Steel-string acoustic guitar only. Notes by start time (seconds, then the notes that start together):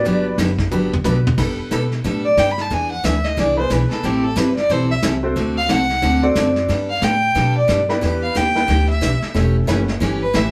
0.05 D3 F#3 B3 D4 G4
0.38 D3 F#3 B3 D4 G4
0.72 D3 F#3 B3 D4 G4
1.05 D3 F#3 B3 D4 G4
1.38 G3 B3 D4 A4
1.71 G3 B3 D4 A4
2.04 G3 B3 D4 A4
2.37 G3 B3 D4 A4
2.70 E3 B3 D4 G#4
3.04 E3 B3 D4 G#4
3.37 E3 B3 D4 G#4
3.70 E3 B3 D4 G#4
4.03 E3 G3 C4 E4 A4
4.36 E3 G3 C4 E4 A4
4.69 E3 G3 C4 E4 A4
5.02 E3 G3 C4 E4 A4
5.36 D3 A3 C4 F#4 A4
5.69 D3 A3 C4 F#4 A4
6.02 D3 A3 C4 F#4 A4
6.35 D3 A3 C4 F#4 A4
6.68 G3 B3 D4 A4
7.02 G3 B3 D4 A4
7.35 G3 B3 D4 A4
7.68 G3 B3 D4 A4
8.01 E3 B3 D4 G4
8.35 E3 B3 D4 G4
8.67 E3 B3 D4 G4
9.01 E3 B3 D4 G4
9.34 E3 A3 C#4 G4
9.67 E3 A3 C#4 G4
10.00 E3 A3 C#4 G4
10.33 E3 A3 C#4 G4